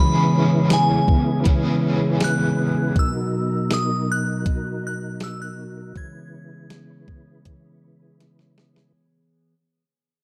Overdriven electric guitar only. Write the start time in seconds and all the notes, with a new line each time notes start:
Already playing: E3 B3
0.00 C#4 G#4
1.44 E3 B3
1.48 C#4 G#4